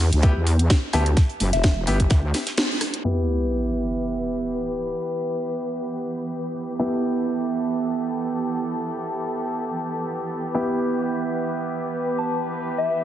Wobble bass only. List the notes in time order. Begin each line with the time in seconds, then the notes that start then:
Already playing: E2
0.13 D2
0.36 E2
0.93 D2
1.40 F#1
1.53 E1
1.87 G1
2.11 D2